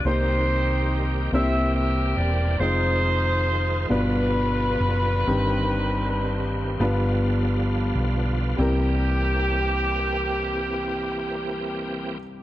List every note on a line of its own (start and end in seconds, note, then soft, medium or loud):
0.05 1.28 C2 loud
0.05 1.28 C3 medium
0.05 1.33 D#3 medium
0.05 1.31 G3 medium
0.05 1.32 A#3 medium
0.05 1.31 A#3 medium
0.05 1.32 C4 medium
0.05 1.28 D#4 medium
0.05 1.32 D#4 medium
0.05 1.28 G4 medium
0.05 1.32 G4 medium
0.05 1.31 G4 medium
0.05 1.06 C5 loud
0.05 1.33 C5 medium
1.32 2.13 C2 medium
1.32 2.56 C3 medium
1.32 1.38 D3 medium
1.32 2.59 G3 medium
1.32 2.59 A#3 medium
1.32 2.60 A#3 medium
1.32 2.60 C4 medium
1.32 2.59 C4 medium
1.32 1.39 D4 medium
1.32 2.55 G4 medium
1.32 2.59 G4 medium
1.32 2.60 G4 medium
1.32 2.55 A#4 medium
1.32 2.60 C5 medium
1.32 1.72 E5 loud
1.39 2.63 E3 medium
1.39 2.63 E4 medium
1.76 2.14 E5 loud
2.17 2.56 E1 loud
2.17 2.59 D5 loud
2.59 3.85 F1 loud
2.59 3.90 D#3 medium
2.59 3.90 F3 medium
2.59 3.89 G#3 medium
2.59 3.89 C4 medium
2.59 3.90 C4 medium
2.59 3.85 D#4 medium
2.59 3.89 D#4 medium
2.59 3.89 F4 medium
2.59 3.85 G#4 medium
2.59 3.89 C5 loud
2.59 3.90 C5 medium
3.89 4.76 G1 loud
3.89 5.23 B2 medium
3.89 5.27 D3 medium
3.89 5.28 F3 medium
3.89 5.26 G3 medium
3.89 5.27 G3 medium
3.89 5.27 B3 medium
3.89 7.32 D4 medium
3.89 5.27 D4 medium
3.89 7.32 F4 medium
3.89 5.27 F4 medium
3.89 7.32 B4 loud
3.89 5.27 B4 medium
4.80 5.23 F#1 medium
5.27 6.76 G1 loud
5.27 6.76 G2 medium
5.27 6.80 D#3 medium
5.27 6.80 G3 medium
5.27 5.34 B3 medium
5.27 6.80 C4 medium
5.27 6.81 G4 medium
5.34 6.83 C4 medium
6.80 7.91 G1 loud
6.80 8.55 G2 medium
6.80 8.58 D3 medium
6.80 8.58 F3 medium
6.80 8.55 G3 medium
6.80 8.59 G3 medium
6.80 8.58 B3 medium
6.80 8.59 D4 medium
6.80 8.58 F4 medium
6.80 8.59 F4 medium
6.80 8.59 B4 medium
7.95 8.54 B1 medium
8.56 12.17 C2 loud
8.56 12.18 C2 medium
8.56 12.18 E3 medium
8.56 12.15 G3 medium
8.56 12.18 A#3 medium
8.56 12.17 C4 medium
8.56 12.18 C4 medium
8.56 12.19 E4 medium
8.56 12.17 G4 loud
8.56 12.18 G4 medium
8.61 12.20 A#4 medium